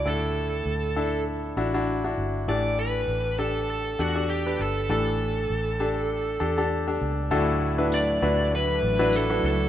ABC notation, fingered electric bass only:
X:1
M:4/4
L:1/8
Q:"Swing 16ths" 1/4=99
K:D
V:1 name="Fingered electric bass" clef=bass
D,,2 D,,3 A,,,2 G,,, | A,,,2 A,,,3 E,,2 G,,, | A,,,2 A,,,3 E,,2 C,, | D,,3 D,,2 A,,,2 C,, |]